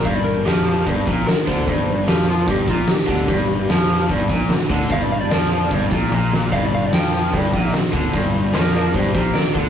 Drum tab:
HH |o---o---o---o---|o---o---o---o---|o---o---o---o---|o---o---o-------|
SD |----o-------o--o|----o-------oo-o|----o-------o--o|----o---------o-|
T1 |----------------|----------------|----------------|------------o---|
BD |o-------o-o---o-|o-------o-o---o-|o-------o-o---o-|o-------o-o-----|

HH |o---o---o---o---|o---o---o---o---|
SD |----o-------oo--|----o-------oo-o|
T1 |----------------|----------------|
BD |o-------o-o---o-|o-------o-o---o-|